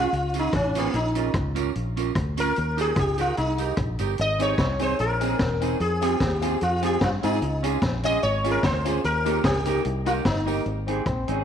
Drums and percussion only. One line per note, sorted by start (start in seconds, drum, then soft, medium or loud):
0.13 closed hi-hat medium
0.34 closed hi-hat medium
0.34 tambourine medium
0.53 kick loud
0.53 cross-stick loud
0.53 closed hi-hat medium
0.75 closed hi-hat medium
0.75 tambourine medium
0.94 closed hi-hat medium
1.15 closed hi-hat medium
1.15 tambourine medium
1.34 kick loud
1.34 cross-stick loud
1.34 closed hi-hat medium
1.56 closed hi-hat medium
1.56 tambourine medium
1.75 closed hi-hat medium
1.97 closed hi-hat medium
1.97 tambourine medium
2.15 kick loud
2.15 cross-stick loud
2.15 closed hi-hat medium
2.37 closed hi-hat medium
2.37 tambourine medium
2.56 closed hi-hat medium
2.78 closed hi-hat medium
2.78 tambourine medium
2.96 kick loud
2.96 cross-stick loud
2.96 closed hi-hat medium
3.18 closed hi-hat medium
3.18 tambourine medium
3.37 closed hi-hat medium
3.58 closed hi-hat medium
3.58 tambourine medium
3.77 kick loud
3.77 cross-stick loud
3.77 closed hi-hat medium
3.99 closed hi-hat medium
3.99 tambourine medium
4.18 closed hi-hat medium
4.39 closed hi-hat medium
4.39 tambourine medium
4.58 kick loud
4.58 snare loud
4.58 closed hi-hat medium
4.79 closed hi-hat medium
4.79 tambourine medium
4.99 closed hi-hat medium
5.21 closed hi-hat medium
5.21 tambourine medium
5.39 kick loud
5.39 snare loud
5.39 closed hi-hat medium
5.61 closed hi-hat medium
5.61 tambourine medium
5.80 closed hi-hat medium
6.02 closed hi-hat medium
6.02 tambourine medium
6.20 kick loud
6.20 snare loud
6.20 closed hi-hat medium
6.42 closed hi-hat medium
6.42 tambourine medium
6.61 closed hi-hat medium
6.82 closed hi-hat medium
6.82 tambourine medium
7.01 kick loud
7.01 snare loud
7.01 closed hi-hat medium
7.23 closed hi-hat medium
7.23 tambourine medium
7.42 closed hi-hat medium
7.64 closed hi-hat loud
7.64 tambourine medium
7.82 kick loud
7.82 snare loud
7.82 closed hi-hat medium
8.03 closed hi-hat medium
8.03 tambourine medium
8.22 closed hi-hat medium
8.44 closed hi-hat medium
8.44 tambourine medium
8.63 kick loud
8.63 snare loud
8.63 closed hi-hat medium
8.85 closed hi-hat medium
8.85 tambourine medium
9.04 closed hi-hat medium
9.26 closed hi-hat medium
9.26 tambourine medium
9.44 kick loud
9.44 snare loud
9.44 closed hi-hat medium
9.65 closed hi-hat medium
9.65 tambourine medium
9.85 closed hi-hat medium
10.06 closed hi-hat medium
10.06 tambourine medium
10.25 kick loud
10.25 snare loud
10.25 closed hi-hat medium
10.47 open hi-hat medium
10.47 tambourine medium
10.66 closed hi-hat medium
10.88 closed hi-hat medium
11.06 kick loud
11.06 cross-stick loud
11.06 closed hi-hat medium
11.28 closed hi-hat medium